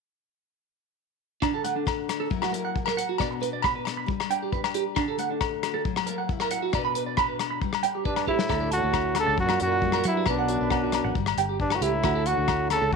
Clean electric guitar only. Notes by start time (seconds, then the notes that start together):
1.42 D4
1.54 A4
1.64 F#5
1.76 D4
2.20 A4
2.42 F#4
2.53 A#4
2.65 F#5
2.87 A#4
2.97 F#5
3.09 F#4
3.19 D5
3.31 muted clean electric guitar stroke
3.42 B4
3.53 D5
3.64 B5
3.76 B4
3.97 B5
4.31 G5
4.42 G4
4.52 B4
4.75 G4
4.96 D4
5.08 A4
5.19 F#5
5.30 D4
5.74 A4
5.97 muted clean electric guitar stroke
6.06 A#4
6.18 F#5
6.40 A#4
6.51 F#5
6.62 F#4
6.73 D5
6.85 B5
6.95 B4
7.06 D5
7.17 B5
7.28 B4
7.51 B5
7.83 G5
7.95 G4
8.05 B4
8.28 G4
8.49 A4
8.60 D5
8.71 A5
8.83 A4
9.26 D5
9.49 F#4
9.60 A#4
9.72 F#5
9.95 A#4
10.05 F#5
10.17 F#4
10.27 B4
10.38 F#5
10.49 F#4
10.61 B4
10.71 F#5
10.84 F#4
11.04 F#5
11.38 G5
11.49 G4
11.82 G4
12.04 F#4
12.15 A4
12.27 F#5
12.37 F#4
12.82 A4